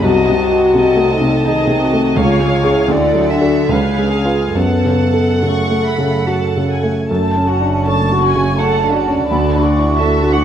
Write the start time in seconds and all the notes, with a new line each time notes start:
Already playing: F#4
0.01 C2 C3 F#4 D#5 A5
0.29 C3
0.52 F#4
0.73 C3 A4 D#5 A5
0.96 A3
1.09 D#4 A4
1.21 C3
1.44 D#3 C4 D#4 G#4 D#5
1.67 C3
1.82 F#4
1.93 A3
2.16 C#2 C#3 C#5 F5 G#5
2.20 F4
2.40 G#3
2.63 C#4 G#4
2.73 E4
2.88 D2 D3 A4 D5 F#5
3.14 F#3
3.29 D4 E5
3.41 F#4 A4
3.69 C#2 C#3 C#4 B4 F5 G#5
3.98 G#3
4.12 G#4
4.25 F4 B4
4.55 F#2 B3 A4 F#5 A5
4.85 C#3
5.14 A4
5.43 C#3 A3 C#6
5.70 A3
5.86 B5
5.98 C#3
6.27 F#4 A5
6.57 C#3
6.70 G#5
6.83 A3
7.08 F#1 F#2 A3 A4 A5
7.36 C#4
7.47 C#4 F#4 F#5
7.61 D4
7.85 A3 C#4 A4 A5 C#6
8.12 F#4
8.21 C#4 F#4 F#5 G#5
8.35 C#3
8.56 A3 C#4 A4 F#5 A5
8.84 D4
8.92 C#4 F#4 D5 F#5
9.07 C#4
9.26 D2 F#4 A4 A5 B5
9.31 D2
9.55 D4
9.62 D4 F#4 F#5 C#6
9.78 E4
9.97 D4 F#4 A4 E5 A5
10.23 F#4
10.30 D4 F#4 F#5